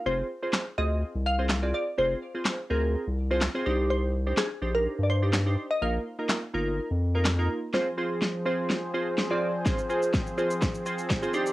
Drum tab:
SH |----------------|----------------|----------------|----------------|
CP |----x-------x---|----x-------x---|----x-------x---|----x-------x---|
SD |----o-------o---|----o-------o---|----o-------o---|----o-------o---|
BD |----------------|----------------|----------------|----------------|

SH |----------------|xxxxxxxxxxxxxxxx|
CP |----------------|----------------|
SD |o---o---o---o---|o---o---o---o---|
BD |----------------|o---o---o---o---|